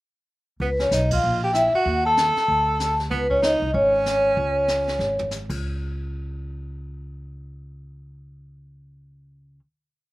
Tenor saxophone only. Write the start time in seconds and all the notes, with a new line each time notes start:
0.62 B3
0.80 C#4
0.92 D#4
1.12 F4
1.44 G4
1.53 E4
1.75 F#4
2.06 A4
3.11 B3
3.30 C#4
3.42 D#4
3.74 C#4